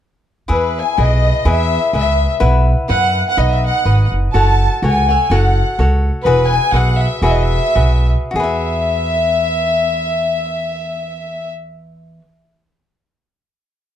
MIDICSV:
0, 0, Header, 1, 4, 480
1, 0, Start_track
1, 0, Key_signature, 4, "major"
1, 0, Tempo, 482315
1, 487, Time_signature, 2, 2, 24, 8
1, 7193, Tempo, 558659
1, 8153, Tempo, 601805
1, 12624, End_track
2, 0, Start_track
2, 0, Title_t, "Violin section"
2, 0, Program_c, 0, 48
2, 496, Note_on_c, 0, 71, 64
2, 738, Note_off_c, 0, 71, 0
2, 765, Note_on_c, 0, 80, 67
2, 982, Note_off_c, 0, 80, 0
2, 998, Note_on_c, 0, 75, 69
2, 1466, Note_off_c, 0, 75, 0
2, 1477, Note_on_c, 0, 76, 74
2, 1909, Note_off_c, 0, 76, 0
2, 1958, Note_on_c, 0, 76, 77
2, 2284, Note_off_c, 0, 76, 0
2, 2888, Note_on_c, 0, 78, 89
2, 3225, Note_off_c, 0, 78, 0
2, 3279, Note_on_c, 0, 78, 87
2, 3366, Note_off_c, 0, 78, 0
2, 3386, Note_on_c, 0, 75, 61
2, 3500, Note_off_c, 0, 75, 0
2, 3517, Note_on_c, 0, 76, 66
2, 3630, Note_off_c, 0, 76, 0
2, 3636, Note_on_c, 0, 78, 65
2, 4077, Note_off_c, 0, 78, 0
2, 4333, Note_on_c, 0, 81, 77
2, 4777, Note_off_c, 0, 81, 0
2, 4845, Note_on_c, 0, 80, 81
2, 5300, Note_off_c, 0, 80, 0
2, 5310, Note_on_c, 0, 78, 69
2, 5766, Note_off_c, 0, 78, 0
2, 6222, Note_on_c, 0, 71, 86
2, 6459, Note_off_c, 0, 71, 0
2, 6466, Note_on_c, 0, 80, 98
2, 6692, Note_off_c, 0, 80, 0
2, 6709, Note_on_c, 0, 78, 86
2, 6966, Note_off_c, 0, 78, 0
2, 6973, Note_on_c, 0, 76, 77
2, 7189, Note_off_c, 0, 76, 0
2, 7200, Note_on_c, 0, 76, 66
2, 7259, Note_off_c, 0, 76, 0
2, 7272, Note_on_c, 0, 75, 66
2, 7335, Note_off_c, 0, 75, 0
2, 7353, Note_on_c, 0, 76, 82
2, 7927, Note_off_c, 0, 76, 0
2, 8147, Note_on_c, 0, 76, 68
2, 10660, Note_off_c, 0, 76, 0
2, 12624, End_track
3, 0, Start_track
3, 0, Title_t, "Cavaquinho"
3, 0, Program_c, 1, 24
3, 478, Note_on_c, 1, 64, 65
3, 484, Note_on_c, 1, 68, 61
3, 486, Note_on_c, 1, 71, 55
3, 490, Note_on_c, 1, 76, 65
3, 966, Note_off_c, 1, 64, 0
3, 966, Note_off_c, 1, 68, 0
3, 970, Note_on_c, 1, 64, 46
3, 978, Note_on_c, 1, 68, 46
3, 980, Note_off_c, 1, 71, 0
3, 984, Note_on_c, 1, 71, 48
3, 1432, Note_off_c, 1, 64, 0
3, 1433, Note_off_c, 1, 68, 0
3, 1444, Note_on_c, 1, 64, 62
3, 1445, Note_on_c, 1, 68, 62
3, 1446, Note_off_c, 1, 71, 0
3, 1450, Note_off_c, 1, 76, 0
3, 1450, Note_on_c, 1, 71, 65
3, 1454, Note_on_c, 1, 76, 72
3, 1913, Note_off_c, 1, 64, 0
3, 1913, Note_off_c, 1, 68, 0
3, 1925, Note_on_c, 1, 64, 41
3, 1925, Note_on_c, 1, 68, 42
3, 1929, Note_off_c, 1, 71, 0
3, 1930, Note_off_c, 1, 76, 0
3, 1933, Note_on_c, 1, 71, 51
3, 1940, Note_on_c, 1, 76, 50
3, 2377, Note_off_c, 1, 64, 0
3, 2377, Note_off_c, 1, 71, 0
3, 2380, Note_off_c, 1, 76, 0
3, 2385, Note_off_c, 1, 68, 0
3, 2389, Note_on_c, 1, 64, 66
3, 2389, Note_on_c, 1, 71, 83
3, 2391, Note_on_c, 1, 78, 73
3, 2392, Note_on_c, 1, 76, 76
3, 2855, Note_off_c, 1, 64, 0
3, 2863, Note_off_c, 1, 71, 0
3, 2867, Note_on_c, 1, 64, 45
3, 2872, Note_off_c, 1, 76, 0
3, 2875, Note_on_c, 1, 71, 49
3, 2879, Note_off_c, 1, 78, 0
3, 2882, Note_on_c, 1, 76, 53
3, 2883, Note_on_c, 1, 78, 57
3, 3349, Note_off_c, 1, 71, 0
3, 3350, Note_off_c, 1, 64, 0
3, 3354, Note_on_c, 1, 63, 56
3, 3358, Note_off_c, 1, 76, 0
3, 3361, Note_on_c, 1, 71, 62
3, 3362, Note_on_c, 1, 75, 60
3, 3365, Note_off_c, 1, 78, 0
3, 3369, Note_on_c, 1, 78, 69
3, 3815, Note_off_c, 1, 63, 0
3, 3824, Note_off_c, 1, 71, 0
3, 3827, Note_on_c, 1, 63, 38
3, 3830, Note_off_c, 1, 75, 0
3, 3836, Note_on_c, 1, 71, 46
3, 3839, Note_off_c, 1, 78, 0
3, 3841, Note_on_c, 1, 75, 51
3, 3843, Note_on_c, 1, 78, 42
3, 4314, Note_off_c, 1, 63, 0
3, 4318, Note_on_c, 1, 66, 56
3, 4320, Note_off_c, 1, 71, 0
3, 4324, Note_on_c, 1, 69, 61
3, 4326, Note_off_c, 1, 75, 0
3, 4330, Note_on_c, 1, 73, 64
3, 4331, Note_off_c, 1, 78, 0
3, 4335, Note_on_c, 1, 78, 67
3, 4798, Note_off_c, 1, 66, 0
3, 4798, Note_off_c, 1, 69, 0
3, 4802, Note_on_c, 1, 66, 53
3, 4803, Note_off_c, 1, 73, 0
3, 4810, Note_on_c, 1, 69, 41
3, 4813, Note_off_c, 1, 78, 0
3, 4815, Note_on_c, 1, 73, 50
3, 4817, Note_on_c, 1, 78, 54
3, 5049, Note_off_c, 1, 78, 0
3, 5059, Note_off_c, 1, 73, 0
3, 5060, Note_off_c, 1, 66, 0
3, 5061, Note_on_c, 1, 78, 43
3, 5064, Note_off_c, 1, 69, 0
3, 5071, Note_on_c, 1, 73, 38
3, 5079, Note_on_c, 1, 69, 38
3, 5274, Note_off_c, 1, 69, 0
3, 5275, Note_off_c, 1, 73, 0
3, 5280, Note_off_c, 1, 78, 0
3, 5286, Note_on_c, 1, 66, 68
3, 5286, Note_on_c, 1, 69, 67
3, 5287, Note_on_c, 1, 73, 66
3, 5290, Note_on_c, 1, 78, 67
3, 5749, Note_off_c, 1, 69, 0
3, 5755, Note_off_c, 1, 73, 0
3, 5756, Note_off_c, 1, 66, 0
3, 5760, Note_on_c, 1, 66, 48
3, 5761, Note_on_c, 1, 69, 52
3, 5769, Note_on_c, 1, 73, 47
3, 5772, Note_off_c, 1, 78, 0
3, 5776, Note_on_c, 1, 78, 55
3, 6223, Note_off_c, 1, 66, 0
3, 6226, Note_off_c, 1, 69, 0
3, 6227, Note_on_c, 1, 66, 64
3, 6230, Note_off_c, 1, 73, 0
3, 6230, Note_on_c, 1, 68, 65
3, 6231, Note_off_c, 1, 78, 0
3, 6235, Note_on_c, 1, 76, 69
3, 6236, Note_on_c, 1, 71, 79
3, 6696, Note_off_c, 1, 66, 0
3, 6700, Note_off_c, 1, 68, 0
3, 6700, Note_on_c, 1, 66, 42
3, 6704, Note_on_c, 1, 68, 55
3, 6707, Note_off_c, 1, 71, 0
3, 6709, Note_off_c, 1, 76, 0
3, 6711, Note_on_c, 1, 71, 48
3, 6713, Note_on_c, 1, 76, 51
3, 7185, Note_off_c, 1, 66, 0
3, 7189, Note_on_c, 1, 66, 69
3, 7190, Note_off_c, 1, 68, 0
3, 7193, Note_off_c, 1, 71, 0
3, 7194, Note_on_c, 1, 68, 73
3, 7196, Note_on_c, 1, 71, 78
3, 7201, Note_off_c, 1, 76, 0
3, 7204, Note_on_c, 1, 76, 64
3, 7639, Note_off_c, 1, 66, 0
3, 7642, Note_off_c, 1, 68, 0
3, 7642, Note_on_c, 1, 66, 39
3, 7645, Note_on_c, 1, 68, 48
3, 7647, Note_off_c, 1, 71, 0
3, 7650, Note_off_c, 1, 76, 0
3, 7651, Note_on_c, 1, 71, 50
3, 7653, Note_on_c, 1, 76, 43
3, 8118, Note_off_c, 1, 66, 0
3, 8122, Note_on_c, 1, 66, 57
3, 8158, Note_off_c, 1, 68, 0
3, 8162, Note_on_c, 1, 68, 74
3, 8191, Note_off_c, 1, 71, 0
3, 8194, Note_on_c, 1, 71, 70
3, 8222, Note_off_c, 1, 76, 0
3, 8225, Note_on_c, 1, 76, 74
3, 11238, Note_off_c, 1, 66, 0
3, 11257, Note_off_c, 1, 68, 0
3, 11273, Note_off_c, 1, 71, 0
3, 11288, Note_off_c, 1, 76, 0
3, 12624, End_track
4, 0, Start_track
4, 0, Title_t, "Upright bass"
4, 0, Program_c, 2, 32
4, 490, Note_on_c, 2, 40, 64
4, 806, Note_off_c, 2, 40, 0
4, 977, Note_on_c, 2, 35, 78
4, 1288, Note_off_c, 2, 35, 0
4, 1445, Note_on_c, 2, 40, 78
4, 1757, Note_off_c, 2, 40, 0
4, 1923, Note_on_c, 2, 37, 75
4, 2233, Note_off_c, 2, 37, 0
4, 2399, Note_on_c, 2, 35, 86
4, 2709, Note_off_c, 2, 35, 0
4, 2882, Note_on_c, 2, 42, 75
4, 3191, Note_off_c, 2, 42, 0
4, 3357, Note_on_c, 2, 35, 64
4, 3669, Note_off_c, 2, 35, 0
4, 3835, Note_on_c, 2, 32, 72
4, 4072, Note_off_c, 2, 32, 0
4, 4097, Note_on_c, 2, 30, 51
4, 4300, Note_off_c, 2, 30, 0
4, 4322, Note_on_c, 2, 30, 72
4, 4636, Note_off_c, 2, 30, 0
4, 4800, Note_on_c, 2, 37, 79
4, 5110, Note_off_c, 2, 37, 0
4, 5273, Note_on_c, 2, 30, 77
4, 5582, Note_off_c, 2, 30, 0
4, 5757, Note_on_c, 2, 37, 77
4, 6061, Note_off_c, 2, 37, 0
4, 6220, Note_on_c, 2, 28, 85
4, 6530, Note_off_c, 2, 28, 0
4, 6688, Note_on_c, 2, 35, 72
4, 7012, Note_off_c, 2, 35, 0
4, 7182, Note_on_c, 2, 28, 79
4, 7484, Note_off_c, 2, 28, 0
4, 7648, Note_on_c, 2, 35, 80
4, 7974, Note_off_c, 2, 35, 0
4, 8148, Note_on_c, 2, 40, 70
4, 11218, Note_off_c, 2, 40, 0
4, 12624, End_track
0, 0, End_of_file